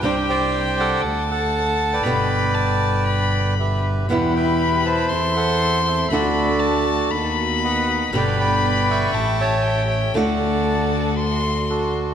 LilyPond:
<<
  \new Staff \with { instrumentName = "Violin" } { \time 4/4 \key g \major \tempo 4 = 118 g''2 a''2 | b''4 a''4 b''4. r8 | b''2 c'''2 | b''4 a''4 b''2 |
b''2 a''4 g''4 | a''2 c'''4. r8 | }
  \new Staff \with { instrumentName = "Bandoneon" } { \time 4/4 \key g \major << { c''8 g''4 fis''4 fis''4~ fis''16 g''16~ | g''2. e''4 | fis''8 g''4 a''4 fis''4 e''8 | d''2 r4 fis''4 |
g''8 b''4 cis'''4 a''4 g''8 | fis''2 r4 a'4 | } \\ { g'8 <c'' d''>4 a'4 a'4~ a'16 <b' d''>16~ | <b' d''>2. <g' b'>4 | b'8 <b' e''>4 <c'' e''>4 <a' c''>4. | <fis' a'>2 r4 <b' dis''>4 |
<b' d''>8 <d'' g''>4 <e'' g''>4 <cis'' e''>4. | <a' d''>2 r4 <d' fis'>4 | } >> }
  \new Staff \with { instrumentName = "String section" } { \time 4/4 \key g \major r1 | r1 | <b e' g'>2 <c' e' a'>2 | <a d' fis'>2 <b dis' fis'>2 |
<b d' g'>2 <a cis' g'>2 | <a d' fis'>1 | }
  \new Staff \with { instrumentName = "Nylon-string guitar" } { \time 4/4 \key g \major <c g c' d' g'>2 r2 | <b, d g b g'>1 | <b, e g b e'>2 r2 | <d a d' fis'>2 r2 |
<b, d g b g'>2 r2 | <d a d' fis'>1 | }
  \new Staff \with { instrumentName = "Double bass" } { \clef bass \time 4/4 \key g \major c,2 d,2 | g,,1 | e,2 e,2 | d,2 dis,2 |
g,,2 a,,2 | d,1 | }
>>